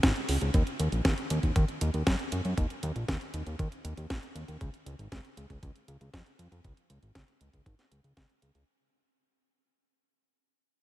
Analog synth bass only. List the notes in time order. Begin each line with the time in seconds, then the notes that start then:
0.03 G#1
0.29 C#2
0.42 C#2
0.54 D#2
0.79 D#2
0.92 A#1
1.05 D#2
1.30 D#2
1.43 D#2
1.56 D#2
1.81 D#2
1.94 D#2
2.07 F#2
2.32 F#2
2.45 F#2
2.58 D#2
2.83 D#2
2.96 A#1
3.08 D#2
3.34 D#2
3.47 D#2
3.59 D#2
3.85 D#2
3.97 D#2
4.10 A#1
4.35 D#2
4.48 D#2
4.61 C#2
4.86 C#2
4.99 G#1
5.12 C#2
5.37 C#2
5.50 C#2
5.63 C#2
5.88 C#2
6.01 C#2
6.13 F2
6.39 F2
6.52 F2
6.64 C#2
6.90 C#2
7.03 G#1
7.15 C#2
7.41 C#2
7.53 C#2
7.66 G#1
7.92 C#2
8.04 C#2
8.17 C#2
8.42 C#2
8.55 C#2